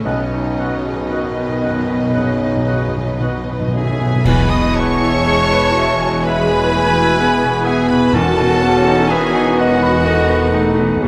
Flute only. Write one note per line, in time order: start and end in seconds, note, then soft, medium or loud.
0.03 3.49 D#5 medium
3.74 4.27 E5 medium
4.26 4.52 G#5 medium
4.50 4.77 B5 medium
4.75 6.25 A5 medium
6.23 7.68 G#5 loud
7.67 7.92 E5 medium
7.90 8.14 G#5 medium
8.16 9.12 F#5 medium
9.11 9.59 E5 medium
9.57 11.00 D#5 medium